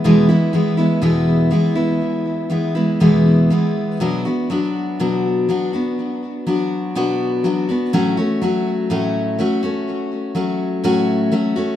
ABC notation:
X:1
M:4/4
L:1/16
Q:1/4=61
K:Bdor
V:1 name="Steel-string acoustic guitar"
[E,,B,,E,G,B,E] [E,G,B,E] [E,G,B,E] [E,G,B,E] [E,,B,,E,G,B,E]2 [E,G,B,E] [E,G,B,E]3 [E,G,B,E] [E,G,B,E] [E,,B,,E,G,B,E]2 [E,G,B,E]2 | [B,,F,B,DF] [B,DF] [F,B,DF]2 [B,,F,B,DF]2 [F,B,DF] [B,DF]3 [F,B,DF]2 [B,,F,B,DF]2 [F,B,DF] [B,DF] | [A,,F,A,CF] [A,CF] [F,A,CF]2 [A,,F,A,CF]2 [F,A,CF] [A,CF]3 [F,A,CF]2 [A,,F,A,CF]2 [F,A,CF] [A,CF] |]